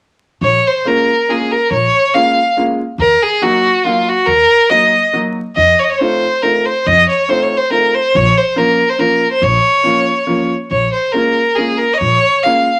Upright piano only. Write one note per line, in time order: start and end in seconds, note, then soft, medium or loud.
0.85 1.08 G#3 medium
0.85 1.08 A#3 soft
0.85 1.08 C#4 medium
0.85 1.08 F4 medium
1.28 1.51 G#3 soft
1.28 1.51 A#3 soft
1.28 1.51 C#4 soft
1.28 1.51 F4 medium
2.14 2.36 G#3 medium
2.14 2.37 A#3 soft
2.14 2.37 C#4 medium
2.14 2.37 F4 medium
2.57 2.79 G#3 soft
2.57 2.79 A#3 soft
2.57 2.79 C#4 soft
2.57 2.79 F4 medium
3.42 3.64 F#3 medium
3.42 3.65 A#3 medium
3.42 3.65 D#4 medium
3.42 3.64 F#4 medium
3.85 4.07 F#3 soft
3.85 4.07 A#3 soft
3.85 4.08 D#4 soft
3.85 4.08 F#4 medium
4.70 4.93 F#3 medium
4.70 4.93 A#3 medium
4.70 4.93 D#4 soft
4.70 4.93 F#4 medium
5.13 5.36 F#3 medium
5.13 5.36 A#3 soft
5.13 5.36 D#4 soft
5.13 5.36 F#4 soft
6.00 6.23 A3 medium
6.00 6.23 C4 soft
6.00 6.23 D#4 soft
6.00 6.23 F4 medium
6.42 6.66 A3 soft
6.42 6.66 C4 soft
6.42 6.66 D#4 soft
6.42 6.66 F4 medium
7.29 7.51 A3 medium
7.29 7.51 C4 medium
7.29 7.51 D#4 medium
7.29 7.51 F4 medium
7.70 7.93 A3 soft
7.70 7.93 C4 soft
7.70 7.93 D#4 soft
7.70 7.94 F4 medium
8.56 8.78 F3 medium
8.56 8.79 A#3 medium
8.56 8.79 C#4 medium
8.56 8.78 F4 medium
8.98 9.21 F3 soft
8.98 9.21 A#3 soft
8.98 9.21 C#4 soft
8.98 9.21 F4 soft
9.83 10.06 F3 medium
9.83 10.07 A#3 medium
9.83 10.07 C#4 soft
9.83 10.07 F4 medium
10.27 10.50 F3 medium
10.27 10.50 A#3 soft
10.27 10.50 C#4 soft
10.27 10.50 F4 medium
11.14 11.37 G#3 medium
11.14 11.37 A#3 soft
11.14 11.37 C#4 soft
11.14 11.37 F4 medium
11.57 11.80 G#3 soft
11.57 11.80 A#3 soft
11.57 11.80 C#4 soft
11.57 11.80 F4 soft
12.44 12.66 G#3 soft
12.44 12.66 A#3 soft
12.44 12.66 C#4 medium
12.44 12.66 F4 medium